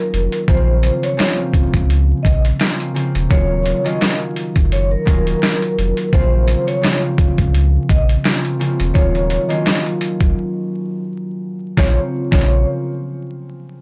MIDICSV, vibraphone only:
0, 0, Header, 1, 2, 480
1, 0, Start_track
1, 0, Key_signature, -5, "minor"
1, 0, Tempo, 705882
1, 326, Time_signature, 4, 2, 24, 8
1, 9394, End_track
2, 0, Start_track
2, 0, Title_t, "Vibraphone"
2, 0, Program_c, 0, 11
2, 0, Note_on_c, 0, 70, 71
2, 301, Note_off_c, 0, 70, 0
2, 333, Note_on_c, 0, 72, 98
2, 679, Note_off_c, 0, 72, 0
2, 706, Note_on_c, 0, 73, 75
2, 918, Note_off_c, 0, 73, 0
2, 1515, Note_on_c, 0, 75, 77
2, 1638, Note_off_c, 0, 75, 0
2, 2251, Note_on_c, 0, 73, 99
2, 2598, Note_off_c, 0, 73, 0
2, 2621, Note_on_c, 0, 75, 73
2, 2836, Note_off_c, 0, 75, 0
2, 3213, Note_on_c, 0, 73, 84
2, 3328, Note_off_c, 0, 73, 0
2, 3341, Note_on_c, 0, 70, 74
2, 3434, Note_off_c, 0, 70, 0
2, 3442, Note_on_c, 0, 70, 75
2, 4137, Note_off_c, 0, 70, 0
2, 4168, Note_on_c, 0, 72, 107
2, 4516, Note_off_c, 0, 72, 0
2, 4538, Note_on_c, 0, 73, 80
2, 4754, Note_off_c, 0, 73, 0
2, 5367, Note_on_c, 0, 75, 78
2, 5485, Note_off_c, 0, 75, 0
2, 6080, Note_on_c, 0, 73, 92
2, 6432, Note_off_c, 0, 73, 0
2, 6450, Note_on_c, 0, 75, 76
2, 6670, Note_off_c, 0, 75, 0
2, 8007, Note_on_c, 0, 73, 87
2, 8149, Note_off_c, 0, 73, 0
2, 8377, Note_on_c, 0, 73, 84
2, 8600, Note_off_c, 0, 73, 0
2, 9394, End_track
0, 0, End_of_file